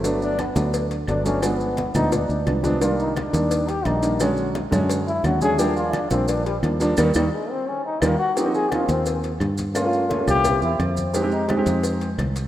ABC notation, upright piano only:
X:1
M:4/4
L:1/16
Q:1/4=173
K:Eb
V:1 name="Upright piano"
[^F,=A,=B,D]4 z2 [F,A,B,D]4 z2 [F,A,B,D] z [F,A,B,D] z | [F,A,=B,D]4 z2 [F,A,B,D]4 z2 [F,A,B,D] z [F,A,B,D] z | [E,G,B,D]4 z2 [E,G,B,D]4 z2 [E,G,B,D] z [E,G,B,D] z | [D,^F,A,^C]4 z2 [D,F,A,C]4 z2 [D,F,A,C] z [D,F,A,C] z |
[F,G,B,D]4 z2 [F,G,B,D]4 z2 [F,G,B,D] z [F,G,B,D] z | [E,G,B,]2 [E,G,B,]2 z8 [E,G,B,]2 z2 | [K:Ebmix] [F,B,CE] [F,B,CE]2 z [F,B,CE] [F,B,CE]6 z4 z | [=A,B,DF] [A,B,DF]2 z [A,B,DF] [A,B,DF]3 [B,C=EG]6 z2 |
[A,CEG] [A,CEG]2 z [A,CEG] [A,CEG]6 z4 z |]